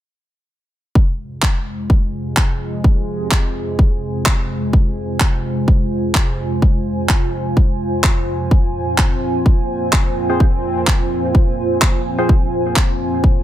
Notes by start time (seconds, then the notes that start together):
0.95 F2 C3 G#3 F4, kick
1.13 C5
1.42 kick, clap
1.59 G#5
1.90 kick
2.37 kick, clap
2.84 kick
3.31 kick, clap
3.79 kick
4.26 kick, clap
4.73 kick
5.20 kick, clap
5.68 kick
6.15 kick, clap
6.62 kick
7.09 kick, clap
7.57 kick
8.04 kick, clap
8.51 A#2 C4, kick
8.98 kick, clap
9.46 kick
9.93 kick, clap
10.30 C4 F4 G#4 C5
10.40 kick
10.87 kick, clap
11.35 kick
11.82 kick, clap
12.19 C4 F4 G#4 C5
12.29 kick
12.76 kick, clap
13.24 kick